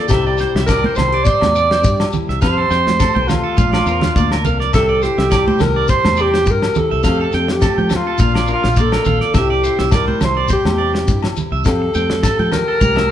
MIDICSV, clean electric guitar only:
0, 0, Header, 1, 3, 480
1, 0, Start_track
1, 0, Tempo, 577478
1, 91, Time_signature, 4, 2, 24, 8
1, 10900, End_track
2, 0, Start_track
2, 0, Title_t, "Clean electric guitar"
2, 0, Program_c, 0, 27
2, 89, Note_on_c, 0, 76, 110
2, 203, Note_off_c, 0, 76, 0
2, 220, Note_on_c, 0, 74, 84
2, 318, Note_off_c, 0, 74, 0
2, 336, Note_on_c, 0, 72, 90
2, 447, Note_off_c, 0, 72, 0
2, 462, Note_on_c, 0, 76, 83
2, 559, Note_off_c, 0, 76, 0
2, 579, Note_on_c, 0, 74, 107
2, 689, Note_off_c, 0, 74, 0
2, 710, Note_on_c, 0, 72, 67
2, 804, Note_off_c, 0, 72, 0
2, 945, Note_on_c, 0, 74, 76
2, 1041, Note_off_c, 0, 74, 0
2, 1056, Note_on_c, 0, 72, 95
2, 1168, Note_off_c, 0, 72, 0
2, 1292, Note_on_c, 0, 74, 82
2, 1406, Note_off_c, 0, 74, 0
2, 1428, Note_on_c, 0, 72, 78
2, 1524, Note_off_c, 0, 72, 0
2, 1905, Note_on_c, 0, 76, 84
2, 2002, Note_off_c, 0, 76, 0
2, 2010, Note_on_c, 0, 77, 107
2, 2125, Note_off_c, 0, 77, 0
2, 2142, Note_on_c, 0, 69, 79
2, 2240, Note_off_c, 0, 69, 0
2, 2249, Note_on_c, 0, 79, 83
2, 2365, Note_off_c, 0, 79, 0
2, 2491, Note_on_c, 0, 69, 100
2, 2606, Note_off_c, 0, 69, 0
2, 2618, Note_on_c, 0, 79, 74
2, 2719, Note_off_c, 0, 79, 0
2, 2855, Note_on_c, 0, 69, 70
2, 2957, Note_off_c, 0, 69, 0
2, 2968, Note_on_c, 0, 77, 100
2, 3085, Note_off_c, 0, 77, 0
2, 3099, Note_on_c, 0, 74, 82
2, 3200, Note_off_c, 0, 74, 0
2, 3212, Note_on_c, 0, 70, 77
2, 3327, Note_off_c, 0, 70, 0
2, 3342, Note_on_c, 0, 77, 74
2, 3441, Note_off_c, 0, 77, 0
2, 3461, Note_on_c, 0, 74, 83
2, 3572, Note_off_c, 0, 74, 0
2, 3588, Note_on_c, 0, 70, 75
2, 3685, Note_off_c, 0, 70, 0
2, 3699, Note_on_c, 0, 77, 77
2, 3811, Note_off_c, 0, 77, 0
2, 3825, Note_on_c, 0, 74, 74
2, 3923, Note_off_c, 0, 74, 0
2, 3937, Note_on_c, 0, 76, 108
2, 4050, Note_off_c, 0, 76, 0
2, 4064, Note_on_c, 0, 74, 74
2, 4163, Note_off_c, 0, 74, 0
2, 4180, Note_on_c, 0, 72, 84
2, 4292, Note_off_c, 0, 72, 0
2, 4306, Note_on_c, 0, 76, 87
2, 4404, Note_off_c, 0, 76, 0
2, 4412, Note_on_c, 0, 74, 102
2, 4528, Note_off_c, 0, 74, 0
2, 4552, Note_on_c, 0, 72, 83
2, 4647, Note_off_c, 0, 72, 0
2, 4790, Note_on_c, 0, 74, 78
2, 4886, Note_off_c, 0, 74, 0
2, 4901, Note_on_c, 0, 72, 88
2, 5013, Note_off_c, 0, 72, 0
2, 5133, Note_on_c, 0, 74, 86
2, 5248, Note_off_c, 0, 74, 0
2, 5265, Note_on_c, 0, 72, 74
2, 5363, Note_off_c, 0, 72, 0
2, 5747, Note_on_c, 0, 76, 84
2, 5844, Note_off_c, 0, 76, 0
2, 5852, Note_on_c, 0, 77, 110
2, 5968, Note_off_c, 0, 77, 0
2, 5991, Note_on_c, 0, 69, 78
2, 6087, Note_off_c, 0, 69, 0
2, 6103, Note_on_c, 0, 79, 94
2, 6214, Note_off_c, 0, 79, 0
2, 6331, Note_on_c, 0, 69, 94
2, 6447, Note_off_c, 0, 69, 0
2, 6465, Note_on_c, 0, 79, 76
2, 6563, Note_off_c, 0, 79, 0
2, 6708, Note_on_c, 0, 69, 73
2, 6805, Note_off_c, 0, 69, 0
2, 6818, Note_on_c, 0, 77, 95
2, 6931, Note_off_c, 0, 77, 0
2, 6943, Note_on_c, 0, 74, 72
2, 7042, Note_off_c, 0, 74, 0
2, 7055, Note_on_c, 0, 70, 77
2, 7169, Note_off_c, 0, 70, 0
2, 7177, Note_on_c, 0, 77, 80
2, 7278, Note_off_c, 0, 77, 0
2, 7295, Note_on_c, 0, 74, 86
2, 7409, Note_off_c, 0, 74, 0
2, 7417, Note_on_c, 0, 70, 74
2, 7518, Note_off_c, 0, 70, 0
2, 7532, Note_on_c, 0, 77, 77
2, 7647, Note_off_c, 0, 77, 0
2, 7656, Note_on_c, 0, 74, 85
2, 7758, Note_off_c, 0, 74, 0
2, 7771, Note_on_c, 0, 76, 120
2, 7886, Note_off_c, 0, 76, 0
2, 7897, Note_on_c, 0, 74, 83
2, 7998, Note_off_c, 0, 74, 0
2, 8009, Note_on_c, 0, 72, 77
2, 8125, Note_off_c, 0, 72, 0
2, 8135, Note_on_c, 0, 76, 75
2, 8237, Note_off_c, 0, 76, 0
2, 8251, Note_on_c, 0, 74, 112
2, 8366, Note_off_c, 0, 74, 0
2, 8376, Note_on_c, 0, 72, 72
2, 8477, Note_off_c, 0, 72, 0
2, 8617, Note_on_c, 0, 74, 83
2, 8718, Note_off_c, 0, 74, 0
2, 8727, Note_on_c, 0, 72, 92
2, 8844, Note_off_c, 0, 72, 0
2, 8963, Note_on_c, 0, 74, 86
2, 9081, Note_off_c, 0, 74, 0
2, 9576, Note_on_c, 0, 76, 72
2, 9677, Note_off_c, 0, 76, 0
2, 9933, Note_on_c, 0, 79, 88
2, 10046, Note_off_c, 0, 79, 0
2, 10164, Note_on_c, 0, 69, 86
2, 10281, Note_off_c, 0, 69, 0
2, 10301, Note_on_c, 0, 79, 76
2, 10399, Note_off_c, 0, 79, 0
2, 10539, Note_on_c, 0, 69, 83
2, 10638, Note_off_c, 0, 69, 0
2, 10643, Note_on_c, 0, 82, 100
2, 10760, Note_off_c, 0, 82, 0
2, 10775, Note_on_c, 0, 76, 78
2, 10876, Note_off_c, 0, 76, 0
2, 10900, End_track
3, 0, Start_track
3, 0, Title_t, "Muted clean electric guitar strokes"
3, 9094, Note_on_c, 9, 29, 74
3, 9177, Note_off_c, 9, 29, 0
3, 9688, Note_on_c, 9, 29, 102
3, 9771, Note_off_c, 9, 29, 0
3, 9823, Note_on_c, 9, 29, 77
3, 9906, Note_off_c, 9, 29, 0
3, 10900, End_track
0, 0, End_of_file